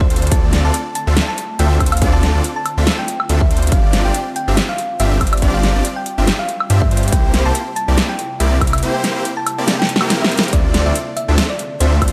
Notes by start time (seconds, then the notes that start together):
Already playing: D3 A3 C4 F4
0.01 C5, kick
0.10 D2 C4 D4 F4 A4 C5, closed hi-hat
0.16 closed hi-hat
0.22 closed hi-hat
0.27 closed hi-hat
0.31 D2 C4 D4 F4 A4 D5 A5, kick, closed hi-hat
0.53 snare, closed hi-hat
0.65 D2 C4 D4 F4 A4 D5 A5
0.74 closed hi-hat
0.95 A5, closed hi-hat
1.07 D2 C4 D4 F4 A4 E5
1.17 snare, closed hi-hat
1.28 A5
1.38 closed hi-hat
1.59 D2 C4 D4 F4 A4 E5 G5, closed hi-hat
1.80 D2 C4 D4 F4 A4 C5, kick, closed hi-hat, high woodblock
1.86 closed hi-hat
1.92 F5, closed hi-hat, high woodblock
1.97 closed hi-hat
2.02 D2 C4 D4 F4 A4 D5, kick, closed hi-hat
2.13 A5
2.23 snare, closed hi-hat
2.35 D2 C4 D4 F4 A4 D5
2.44 closed hi-hat
2.56 A5
2.66 closed hi-hat, high woodblock
2.77 D2 C4 D4 F4 A4 E5
2.87 snare, closed hi-hat
2.99 G5
3.08 closed hi-hat
3.20 high woodblock
3.29 D2 C4 D4 F4 A4 E5, closed hi-hat
3.41 E5, kick
3.51 D2 C4 D4 F4 A4 C5, closed hi-hat
3.57 closed hi-hat
3.62 closed hi-hat
3.67 closed hi-hat
3.72 G1 G3 C4 D4 F4 G4 D5 F5, kick, closed hi-hat
3.93 snare, closed hi-hat
4.05 G1 C4 D4 F4 G4 D5 G5
4.14 closed hi-hat
4.36 G5, closed hi-hat
4.48 G1 C4 D4 F4 G4 E5
4.57 snare, closed hi-hat
4.69 F5
4.78 closed hi-hat
5.00 G1 C4 D4 F4 G4 E5, closed hi-hat
5.21 G1 C4 D4 F4 G4 C5, kick, closed hi-hat, high woodblock
5.27 closed hi-hat
5.33 D5, closed hi-hat, high woodblock
5.37 closed hi-hat
5.42 G1 C4 D4 F4 G4 D5, kick, closed hi-hat
5.54 F5
5.63 snare, closed hi-hat
5.75 G1 C4 D4 F4 G4 D5
5.85 closed hi-hat
5.96 G5
6.06 closed hi-hat
6.18 G1 C4 D4 F4 G4 E5
6.27 snare, closed hi-hat
6.39 F5
6.49 closed hi-hat
6.60 high woodblock
6.70 G2 C4 D4 F4 G4 E5, closed hi-hat
6.81 E5, kick
6.91 G2 C4 D4 F4 G4 C5, closed hi-hat
6.97 closed hi-hat
7.03 closed hi-hat
7.08 closed hi-hat
7.12 C2 C3 A#3 C4 E4 G4 C5 G5, kick, closed hi-hat
7.34 snare, closed hi-hat
7.45 C2 A#3 C4 E4 G4 C5 A5
7.55 closed hi-hat
7.76 A5, closed hi-hat
7.88 C2 A#3 C4 E4 G4 D5
7.98 snare, closed hi-hat
8.09 G5
8.19 closed hi-hat
8.40 C2 A#3 C4 E4 G4 D5 E5, closed hi-hat
8.61 C2 A#3 C4 E4 G4 A#4, kick, closed hi-hat, high woodblock
8.67 closed hi-hat
8.73 E5, closed hi-hat, high woodblock
8.78 closed hi-hat
8.83 A#3 C4 E4 G4 C5, closed hi-hat
8.94 G5
9.04 snare, closed hi-hat
9.16 A#3 C4 E4 G4 C5
9.25 closed hi-hat
9.37 A5
9.47 closed hi-hat, high woodblock
9.58 A#3 C4 E4 G4 D5
9.68 snare, closed hi-hat
9.79 G5, snare
9.89 closed hi-hat
9.96 snare
10.01 A#3 C4 E4 G4 A#4, high woodblock
10.10 snare, closed hi-hat
10.22 E5, snare
10.31 A#3 C4 E4 G4 A#4, closed hi-hat
10.38 snare, closed hi-hat
10.44 closed hi-hat
10.48 closed hi-hat
10.53 D2 D3 A3 C4 D4 F4 A4 D5, kick, closed hi-hat
10.74 snare, closed hi-hat
10.86 D2 C4 D4 F4 A4 D5 E5
10.95 closed hi-hat
11.17 E5, closed hi-hat
11.28 D2 C4 D4 F4 A4 E5
11.38 snare, closed hi-hat
11.50 D5
11.59 closed hi-hat
11.80 D2 C4 D4 F4 A4 C5 E5, closed hi-hat
12.02 D2 C4 D4 F4 A4 C5, kick, closed hi-hat, high woodblock
12.08 closed hi-hat